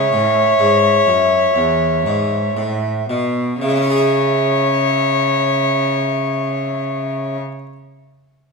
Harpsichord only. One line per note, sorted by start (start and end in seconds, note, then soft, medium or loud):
0.00 3.56 E4 soft
0.00 3.56 G#4 soft
0.13 0.55 A2 soft
0.59 1.03 G#2 medium
1.07 1.51 F#2 soft
1.56 2.01 E2 soft
2.06 2.52 G#2 soft
2.57 3.04 A2 soft
3.10 3.58 B2 soft
3.62 7.38 C#3 medium
3.69 7.45 G#3 soft
3.76 7.52 C#4 soft
3.82 7.59 E4 soft
3.90 7.66 G#4 soft
3.97 7.73 E5 soft